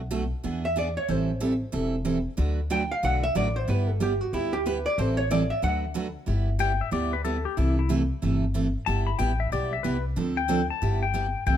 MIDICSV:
0, 0, Header, 1, 5, 480
1, 0, Start_track
1, 0, Key_signature, 1, "major"
1, 0, Tempo, 324324
1, 1610, Time_signature, 4, 2, 24, 8
1, 17128, End_track
2, 0, Start_track
2, 0, Title_t, "Electric slide guitar"
2, 0, Program_c, 0, 29
2, 9771, Note_on_c, 0, 79, 98
2, 10066, Note_off_c, 0, 79, 0
2, 10080, Note_on_c, 0, 76, 84
2, 10244, Note_off_c, 0, 76, 0
2, 10250, Note_on_c, 0, 74, 89
2, 10546, Note_off_c, 0, 74, 0
2, 10554, Note_on_c, 0, 71, 91
2, 10716, Note_off_c, 0, 71, 0
2, 10722, Note_on_c, 0, 69, 92
2, 11022, Note_off_c, 0, 69, 0
2, 11029, Note_on_c, 0, 67, 97
2, 11199, Note_off_c, 0, 67, 0
2, 11207, Note_on_c, 0, 64, 79
2, 11505, Note_off_c, 0, 64, 0
2, 11528, Note_on_c, 0, 64, 99
2, 11689, Note_off_c, 0, 64, 0
2, 13118, Note_on_c, 0, 81, 98
2, 13412, Note_off_c, 0, 81, 0
2, 13418, Note_on_c, 0, 83, 85
2, 13595, Note_off_c, 0, 83, 0
2, 13596, Note_on_c, 0, 79, 87
2, 13900, Note_off_c, 0, 79, 0
2, 13911, Note_on_c, 0, 76, 93
2, 14082, Note_off_c, 0, 76, 0
2, 14097, Note_on_c, 0, 74, 91
2, 14391, Note_off_c, 0, 74, 0
2, 14398, Note_on_c, 0, 76, 83
2, 14550, Note_on_c, 0, 71, 112
2, 14565, Note_off_c, 0, 76, 0
2, 14857, Note_off_c, 0, 71, 0
2, 15351, Note_on_c, 0, 79, 103
2, 15820, Note_off_c, 0, 79, 0
2, 15843, Note_on_c, 0, 81, 87
2, 16306, Note_off_c, 0, 81, 0
2, 16318, Note_on_c, 0, 79, 91
2, 16952, Note_off_c, 0, 79, 0
2, 16972, Note_on_c, 0, 79, 100
2, 17128, Note_off_c, 0, 79, 0
2, 17128, End_track
3, 0, Start_track
3, 0, Title_t, "Hollow-body jazz guitar"
3, 0, Program_c, 1, 26
3, 962, Note_on_c, 1, 76, 106
3, 1128, Note_off_c, 1, 76, 0
3, 1160, Note_on_c, 1, 74, 80
3, 1430, Note_off_c, 1, 74, 0
3, 1436, Note_on_c, 1, 73, 93
3, 1624, Note_off_c, 1, 73, 0
3, 1624, Note_on_c, 1, 72, 90
3, 3056, Note_off_c, 1, 72, 0
3, 4021, Note_on_c, 1, 79, 94
3, 4308, Note_off_c, 1, 79, 0
3, 4314, Note_on_c, 1, 77, 105
3, 4482, Note_off_c, 1, 77, 0
3, 4508, Note_on_c, 1, 78, 103
3, 4781, Note_off_c, 1, 78, 0
3, 4787, Note_on_c, 1, 76, 107
3, 4959, Note_off_c, 1, 76, 0
3, 4982, Note_on_c, 1, 74, 94
3, 5268, Note_on_c, 1, 72, 93
3, 5272, Note_off_c, 1, 74, 0
3, 5439, Note_off_c, 1, 72, 0
3, 5468, Note_on_c, 1, 71, 82
3, 5762, Note_off_c, 1, 71, 0
3, 5762, Note_on_c, 1, 69, 82
3, 5926, Note_off_c, 1, 69, 0
3, 5954, Note_on_c, 1, 67, 83
3, 6227, Note_off_c, 1, 67, 0
3, 6227, Note_on_c, 1, 66, 101
3, 6398, Note_off_c, 1, 66, 0
3, 6420, Note_on_c, 1, 64, 82
3, 6704, Note_on_c, 1, 67, 104
3, 6711, Note_off_c, 1, 64, 0
3, 6877, Note_off_c, 1, 67, 0
3, 6905, Note_on_c, 1, 71, 85
3, 7189, Note_on_c, 1, 74, 116
3, 7193, Note_off_c, 1, 71, 0
3, 7359, Note_off_c, 1, 74, 0
3, 7384, Note_on_c, 1, 72, 89
3, 7648, Note_off_c, 1, 72, 0
3, 7654, Note_on_c, 1, 73, 106
3, 7831, Note_off_c, 1, 73, 0
3, 7864, Note_on_c, 1, 74, 91
3, 8143, Note_on_c, 1, 76, 101
3, 8153, Note_off_c, 1, 74, 0
3, 8316, Note_off_c, 1, 76, 0
3, 8344, Note_on_c, 1, 78, 98
3, 8782, Note_off_c, 1, 78, 0
3, 17128, End_track
4, 0, Start_track
4, 0, Title_t, "Steel-string acoustic guitar"
4, 0, Program_c, 2, 25
4, 157, Note_on_c, 2, 47, 81
4, 161, Note_on_c, 2, 54, 81
4, 166, Note_on_c, 2, 57, 83
4, 167, Note_on_c, 2, 62, 93
4, 169, Note_on_c, 2, 66, 87
4, 333, Note_off_c, 2, 47, 0
4, 335, Note_off_c, 2, 54, 0
4, 337, Note_off_c, 2, 57, 0
4, 338, Note_off_c, 2, 62, 0
4, 339, Note_off_c, 2, 66, 0
4, 645, Note_on_c, 2, 52, 59
4, 649, Note_on_c, 2, 59, 66
4, 657, Note_on_c, 2, 62, 67
4, 658, Note_on_c, 2, 68, 64
4, 962, Note_off_c, 2, 52, 0
4, 964, Note_off_c, 2, 59, 0
4, 968, Note_off_c, 2, 62, 0
4, 968, Note_off_c, 2, 68, 0
4, 1121, Note_on_c, 2, 52, 74
4, 1131, Note_on_c, 2, 59, 71
4, 1136, Note_on_c, 2, 68, 70
4, 1139, Note_on_c, 2, 62, 79
4, 1295, Note_off_c, 2, 52, 0
4, 1300, Note_off_c, 2, 59, 0
4, 1302, Note_off_c, 2, 68, 0
4, 1304, Note_off_c, 2, 62, 0
4, 1603, Note_on_c, 2, 52, 57
4, 1606, Note_on_c, 2, 55, 64
4, 1606, Note_on_c, 2, 60, 57
4, 1609, Note_on_c, 2, 64, 63
4, 1616, Note_on_c, 2, 69, 65
4, 1920, Note_off_c, 2, 52, 0
4, 1922, Note_off_c, 2, 55, 0
4, 1922, Note_off_c, 2, 60, 0
4, 1923, Note_off_c, 2, 64, 0
4, 1927, Note_off_c, 2, 69, 0
4, 2078, Note_on_c, 2, 52, 75
4, 2082, Note_on_c, 2, 60, 85
4, 2084, Note_on_c, 2, 55, 79
4, 2090, Note_on_c, 2, 64, 82
4, 2090, Note_on_c, 2, 69, 88
4, 2253, Note_off_c, 2, 52, 0
4, 2255, Note_off_c, 2, 60, 0
4, 2256, Note_off_c, 2, 55, 0
4, 2259, Note_off_c, 2, 64, 0
4, 2259, Note_off_c, 2, 69, 0
4, 2549, Note_on_c, 2, 52, 66
4, 2556, Note_on_c, 2, 55, 67
4, 2561, Note_on_c, 2, 60, 63
4, 2561, Note_on_c, 2, 64, 69
4, 2567, Note_on_c, 2, 69, 68
4, 2873, Note_off_c, 2, 52, 0
4, 2877, Note_off_c, 2, 55, 0
4, 2879, Note_off_c, 2, 60, 0
4, 2879, Note_off_c, 2, 64, 0
4, 2882, Note_off_c, 2, 69, 0
4, 3031, Note_on_c, 2, 52, 73
4, 3031, Note_on_c, 2, 55, 76
4, 3035, Note_on_c, 2, 60, 81
4, 3041, Note_on_c, 2, 64, 69
4, 3042, Note_on_c, 2, 69, 74
4, 3209, Note_off_c, 2, 52, 0
4, 3209, Note_off_c, 2, 55, 0
4, 3211, Note_off_c, 2, 60, 0
4, 3214, Note_off_c, 2, 64, 0
4, 3215, Note_off_c, 2, 69, 0
4, 3506, Note_on_c, 2, 50, 59
4, 3512, Note_on_c, 2, 54, 64
4, 3514, Note_on_c, 2, 57, 62
4, 3519, Note_on_c, 2, 62, 65
4, 3520, Note_on_c, 2, 66, 63
4, 3522, Note_on_c, 2, 71, 62
4, 3831, Note_off_c, 2, 50, 0
4, 3834, Note_off_c, 2, 54, 0
4, 3835, Note_off_c, 2, 57, 0
4, 3838, Note_off_c, 2, 62, 0
4, 3838, Note_off_c, 2, 66, 0
4, 3839, Note_off_c, 2, 71, 0
4, 3996, Note_on_c, 2, 50, 79
4, 3998, Note_on_c, 2, 54, 81
4, 4002, Note_on_c, 2, 57, 81
4, 4003, Note_on_c, 2, 62, 85
4, 4006, Note_on_c, 2, 66, 80
4, 4011, Note_on_c, 2, 71, 91
4, 4172, Note_off_c, 2, 50, 0
4, 4173, Note_off_c, 2, 54, 0
4, 4175, Note_off_c, 2, 57, 0
4, 4175, Note_off_c, 2, 62, 0
4, 4177, Note_off_c, 2, 66, 0
4, 4179, Note_off_c, 2, 71, 0
4, 4482, Note_on_c, 2, 50, 62
4, 4486, Note_on_c, 2, 54, 65
4, 4486, Note_on_c, 2, 57, 62
4, 4490, Note_on_c, 2, 62, 63
4, 4494, Note_on_c, 2, 66, 66
4, 4497, Note_on_c, 2, 71, 66
4, 4799, Note_off_c, 2, 50, 0
4, 4801, Note_off_c, 2, 54, 0
4, 4801, Note_off_c, 2, 57, 0
4, 4803, Note_off_c, 2, 62, 0
4, 4805, Note_off_c, 2, 66, 0
4, 4806, Note_off_c, 2, 71, 0
4, 4957, Note_on_c, 2, 50, 72
4, 4960, Note_on_c, 2, 54, 76
4, 4965, Note_on_c, 2, 57, 82
4, 4968, Note_on_c, 2, 62, 73
4, 4970, Note_on_c, 2, 71, 72
4, 4971, Note_on_c, 2, 66, 84
4, 5132, Note_off_c, 2, 50, 0
4, 5133, Note_off_c, 2, 54, 0
4, 5136, Note_off_c, 2, 57, 0
4, 5137, Note_off_c, 2, 62, 0
4, 5138, Note_off_c, 2, 71, 0
4, 5139, Note_off_c, 2, 66, 0
4, 5439, Note_on_c, 2, 55, 61
4, 5442, Note_on_c, 2, 59, 63
4, 5450, Note_on_c, 2, 64, 68
4, 5457, Note_on_c, 2, 67, 63
4, 5757, Note_off_c, 2, 55, 0
4, 5759, Note_off_c, 2, 59, 0
4, 5762, Note_off_c, 2, 64, 0
4, 5766, Note_off_c, 2, 67, 0
4, 5923, Note_on_c, 2, 55, 84
4, 5931, Note_on_c, 2, 59, 83
4, 5935, Note_on_c, 2, 64, 85
4, 5939, Note_on_c, 2, 67, 86
4, 6094, Note_off_c, 2, 55, 0
4, 6098, Note_off_c, 2, 59, 0
4, 6100, Note_off_c, 2, 64, 0
4, 6102, Note_off_c, 2, 67, 0
4, 6410, Note_on_c, 2, 55, 61
4, 6418, Note_on_c, 2, 59, 60
4, 6422, Note_on_c, 2, 64, 69
4, 6422, Note_on_c, 2, 67, 67
4, 6722, Note_off_c, 2, 55, 0
4, 6726, Note_off_c, 2, 59, 0
4, 6728, Note_off_c, 2, 64, 0
4, 6728, Note_off_c, 2, 67, 0
4, 6893, Note_on_c, 2, 55, 72
4, 6898, Note_on_c, 2, 59, 75
4, 6904, Note_on_c, 2, 64, 75
4, 6910, Note_on_c, 2, 67, 85
4, 7059, Note_off_c, 2, 55, 0
4, 7061, Note_off_c, 2, 59, 0
4, 7064, Note_off_c, 2, 64, 0
4, 7067, Note_off_c, 2, 67, 0
4, 7375, Note_on_c, 2, 52, 63
4, 7378, Note_on_c, 2, 55, 59
4, 7378, Note_on_c, 2, 60, 64
4, 7381, Note_on_c, 2, 64, 61
4, 7386, Note_on_c, 2, 69, 64
4, 7684, Note_off_c, 2, 52, 0
4, 7686, Note_off_c, 2, 55, 0
4, 7686, Note_off_c, 2, 60, 0
4, 7687, Note_off_c, 2, 64, 0
4, 7690, Note_off_c, 2, 69, 0
4, 7852, Note_on_c, 2, 52, 79
4, 7856, Note_on_c, 2, 55, 88
4, 7859, Note_on_c, 2, 60, 91
4, 7866, Note_on_c, 2, 64, 89
4, 7866, Note_on_c, 2, 69, 91
4, 8018, Note_off_c, 2, 52, 0
4, 8020, Note_off_c, 2, 55, 0
4, 8022, Note_off_c, 2, 60, 0
4, 8025, Note_off_c, 2, 64, 0
4, 8025, Note_off_c, 2, 69, 0
4, 8321, Note_on_c, 2, 50, 63
4, 8328, Note_on_c, 2, 54, 64
4, 8333, Note_on_c, 2, 57, 64
4, 8334, Note_on_c, 2, 66, 70
4, 8337, Note_on_c, 2, 62, 59
4, 8338, Note_on_c, 2, 71, 60
4, 8638, Note_off_c, 2, 50, 0
4, 8641, Note_off_c, 2, 54, 0
4, 8644, Note_off_c, 2, 57, 0
4, 8644, Note_off_c, 2, 66, 0
4, 8645, Note_off_c, 2, 62, 0
4, 8646, Note_off_c, 2, 71, 0
4, 8794, Note_on_c, 2, 50, 72
4, 8803, Note_on_c, 2, 57, 74
4, 8804, Note_on_c, 2, 54, 76
4, 8810, Note_on_c, 2, 66, 83
4, 8813, Note_on_c, 2, 62, 80
4, 8814, Note_on_c, 2, 71, 74
4, 8969, Note_off_c, 2, 50, 0
4, 8974, Note_off_c, 2, 54, 0
4, 8974, Note_off_c, 2, 57, 0
4, 8978, Note_off_c, 2, 66, 0
4, 8979, Note_off_c, 2, 62, 0
4, 8979, Note_off_c, 2, 71, 0
4, 9268, Note_on_c, 2, 55, 63
4, 9277, Note_on_c, 2, 59, 58
4, 9287, Note_on_c, 2, 64, 60
4, 9289, Note_on_c, 2, 67, 61
4, 9591, Note_off_c, 2, 55, 0
4, 9596, Note_off_c, 2, 59, 0
4, 9601, Note_off_c, 2, 64, 0
4, 9602, Note_off_c, 2, 67, 0
4, 9751, Note_on_c, 2, 55, 79
4, 9755, Note_on_c, 2, 59, 86
4, 9760, Note_on_c, 2, 64, 83
4, 9763, Note_on_c, 2, 67, 80
4, 9928, Note_off_c, 2, 55, 0
4, 9930, Note_off_c, 2, 59, 0
4, 9933, Note_off_c, 2, 64, 0
4, 9934, Note_off_c, 2, 67, 0
4, 10231, Note_on_c, 2, 55, 60
4, 10239, Note_on_c, 2, 59, 64
4, 10239, Note_on_c, 2, 64, 65
4, 10249, Note_on_c, 2, 67, 70
4, 10553, Note_off_c, 2, 55, 0
4, 10557, Note_off_c, 2, 59, 0
4, 10557, Note_off_c, 2, 64, 0
4, 10562, Note_off_c, 2, 67, 0
4, 10723, Note_on_c, 2, 55, 66
4, 10728, Note_on_c, 2, 59, 72
4, 10730, Note_on_c, 2, 64, 78
4, 10736, Note_on_c, 2, 67, 72
4, 10894, Note_off_c, 2, 55, 0
4, 10897, Note_off_c, 2, 59, 0
4, 10898, Note_off_c, 2, 64, 0
4, 10901, Note_off_c, 2, 67, 0
4, 11204, Note_on_c, 2, 48, 57
4, 11204, Note_on_c, 2, 52, 60
4, 11212, Note_on_c, 2, 57, 57
4, 11213, Note_on_c, 2, 64, 66
4, 11219, Note_on_c, 2, 69, 70
4, 11519, Note_off_c, 2, 52, 0
4, 11520, Note_off_c, 2, 48, 0
4, 11524, Note_off_c, 2, 57, 0
4, 11524, Note_off_c, 2, 64, 0
4, 11527, Note_off_c, 2, 69, 0
4, 11678, Note_on_c, 2, 48, 78
4, 11687, Note_on_c, 2, 52, 81
4, 11690, Note_on_c, 2, 57, 77
4, 11690, Note_on_c, 2, 64, 92
4, 11699, Note_on_c, 2, 69, 85
4, 11852, Note_off_c, 2, 48, 0
4, 11857, Note_off_c, 2, 52, 0
4, 11858, Note_off_c, 2, 57, 0
4, 11858, Note_off_c, 2, 64, 0
4, 11862, Note_off_c, 2, 69, 0
4, 12164, Note_on_c, 2, 48, 56
4, 12169, Note_on_c, 2, 52, 61
4, 12172, Note_on_c, 2, 57, 59
4, 12182, Note_on_c, 2, 64, 62
4, 12183, Note_on_c, 2, 69, 73
4, 12480, Note_off_c, 2, 48, 0
4, 12483, Note_off_c, 2, 52, 0
4, 12484, Note_off_c, 2, 57, 0
4, 12489, Note_off_c, 2, 64, 0
4, 12489, Note_off_c, 2, 69, 0
4, 12641, Note_on_c, 2, 48, 72
4, 12650, Note_on_c, 2, 52, 73
4, 12653, Note_on_c, 2, 57, 76
4, 12657, Note_on_c, 2, 64, 83
4, 12659, Note_on_c, 2, 69, 81
4, 12814, Note_off_c, 2, 48, 0
4, 12819, Note_off_c, 2, 52, 0
4, 12820, Note_off_c, 2, 57, 0
4, 12822, Note_off_c, 2, 64, 0
4, 12823, Note_off_c, 2, 69, 0
4, 13125, Note_on_c, 2, 55, 60
4, 13132, Note_on_c, 2, 59, 63
4, 13137, Note_on_c, 2, 64, 65
4, 13141, Note_on_c, 2, 67, 59
4, 13441, Note_off_c, 2, 55, 0
4, 13445, Note_off_c, 2, 59, 0
4, 13447, Note_off_c, 2, 64, 0
4, 13449, Note_off_c, 2, 67, 0
4, 13595, Note_on_c, 2, 55, 83
4, 13599, Note_on_c, 2, 59, 84
4, 13605, Note_on_c, 2, 64, 85
4, 13608, Note_on_c, 2, 67, 89
4, 13771, Note_off_c, 2, 55, 0
4, 13773, Note_off_c, 2, 59, 0
4, 13776, Note_off_c, 2, 64, 0
4, 13778, Note_off_c, 2, 67, 0
4, 14089, Note_on_c, 2, 55, 67
4, 14093, Note_on_c, 2, 59, 59
4, 14099, Note_on_c, 2, 64, 63
4, 14104, Note_on_c, 2, 67, 67
4, 14403, Note_off_c, 2, 55, 0
4, 14406, Note_off_c, 2, 59, 0
4, 14408, Note_off_c, 2, 64, 0
4, 14411, Note_off_c, 2, 67, 0
4, 14565, Note_on_c, 2, 55, 71
4, 14566, Note_on_c, 2, 59, 76
4, 14574, Note_on_c, 2, 64, 77
4, 14578, Note_on_c, 2, 67, 81
4, 14737, Note_off_c, 2, 55, 0
4, 14737, Note_off_c, 2, 59, 0
4, 14741, Note_off_c, 2, 64, 0
4, 14743, Note_off_c, 2, 67, 0
4, 15039, Note_on_c, 2, 50, 59
4, 15044, Note_on_c, 2, 53, 61
4, 15047, Note_on_c, 2, 60, 62
4, 15054, Note_on_c, 2, 62, 59
4, 15056, Note_on_c, 2, 69, 66
4, 15359, Note_off_c, 2, 50, 0
4, 15361, Note_off_c, 2, 53, 0
4, 15363, Note_off_c, 2, 60, 0
4, 15366, Note_off_c, 2, 62, 0
4, 15367, Note_off_c, 2, 69, 0
4, 15512, Note_on_c, 2, 50, 75
4, 15520, Note_on_c, 2, 53, 84
4, 15526, Note_on_c, 2, 60, 83
4, 15529, Note_on_c, 2, 62, 91
4, 15532, Note_on_c, 2, 69, 92
4, 15690, Note_off_c, 2, 50, 0
4, 15695, Note_off_c, 2, 53, 0
4, 15697, Note_off_c, 2, 60, 0
4, 15699, Note_off_c, 2, 62, 0
4, 15701, Note_off_c, 2, 69, 0
4, 16008, Note_on_c, 2, 55, 55
4, 16009, Note_on_c, 2, 59, 63
4, 16021, Note_on_c, 2, 64, 64
4, 16022, Note_on_c, 2, 67, 67
4, 16324, Note_off_c, 2, 55, 0
4, 16324, Note_off_c, 2, 59, 0
4, 16330, Note_off_c, 2, 64, 0
4, 16331, Note_off_c, 2, 67, 0
4, 16481, Note_on_c, 2, 55, 63
4, 16490, Note_on_c, 2, 59, 73
4, 16495, Note_on_c, 2, 64, 69
4, 16499, Note_on_c, 2, 67, 82
4, 16656, Note_off_c, 2, 55, 0
4, 16660, Note_off_c, 2, 59, 0
4, 16663, Note_off_c, 2, 64, 0
4, 16665, Note_off_c, 2, 67, 0
4, 16967, Note_on_c, 2, 48, 58
4, 16970, Note_on_c, 2, 52, 60
4, 16970, Note_on_c, 2, 57, 68
4, 16976, Note_on_c, 2, 64, 60
4, 16982, Note_on_c, 2, 69, 59
4, 17128, Note_off_c, 2, 48, 0
4, 17128, Note_off_c, 2, 52, 0
4, 17128, Note_off_c, 2, 57, 0
4, 17128, Note_off_c, 2, 64, 0
4, 17128, Note_off_c, 2, 69, 0
4, 17128, End_track
5, 0, Start_track
5, 0, Title_t, "Upright bass"
5, 0, Program_c, 3, 32
5, 0, Note_on_c, 3, 35, 93
5, 455, Note_off_c, 3, 35, 0
5, 661, Note_on_c, 3, 40, 88
5, 1425, Note_off_c, 3, 40, 0
5, 1612, Note_on_c, 3, 33, 90
5, 2379, Note_off_c, 3, 33, 0
5, 2566, Note_on_c, 3, 28, 80
5, 3335, Note_off_c, 3, 28, 0
5, 3527, Note_on_c, 3, 38, 91
5, 4295, Note_off_c, 3, 38, 0
5, 4485, Note_on_c, 3, 35, 76
5, 4894, Note_off_c, 3, 35, 0
5, 4962, Note_on_c, 3, 33, 89
5, 5372, Note_off_c, 3, 33, 0
5, 5446, Note_on_c, 3, 31, 93
5, 6214, Note_off_c, 3, 31, 0
5, 6408, Note_on_c, 3, 38, 81
5, 7175, Note_off_c, 3, 38, 0
5, 7371, Note_on_c, 3, 33, 96
5, 8137, Note_off_c, 3, 33, 0
5, 8328, Note_on_c, 3, 38, 82
5, 9095, Note_off_c, 3, 38, 0
5, 9290, Note_on_c, 3, 31, 87
5, 10057, Note_off_c, 3, 31, 0
5, 10240, Note_on_c, 3, 38, 82
5, 11011, Note_off_c, 3, 38, 0
5, 11216, Note_on_c, 3, 36, 90
5, 11981, Note_off_c, 3, 36, 0
5, 12178, Note_on_c, 3, 31, 79
5, 12942, Note_off_c, 3, 31, 0
5, 13134, Note_on_c, 3, 31, 91
5, 13516, Note_off_c, 3, 31, 0
5, 13610, Note_on_c, 3, 33, 88
5, 14018, Note_off_c, 3, 33, 0
5, 14086, Note_on_c, 3, 35, 82
5, 14496, Note_off_c, 3, 35, 0
5, 14572, Note_on_c, 3, 36, 88
5, 14979, Note_off_c, 3, 36, 0
5, 15052, Note_on_c, 3, 38, 89
5, 15820, Note_off_c, 3, 38, 0
5, 16013, Note_on_c, 3, 31, 88
5, 16781, Note_off_c, 3, 31, 0
5, 16968, Note_on_c, 3, 36, 88
5, 17128, Note_off_c, 3, 36, 0
5, 17128, End_track
0, 0, End_of_file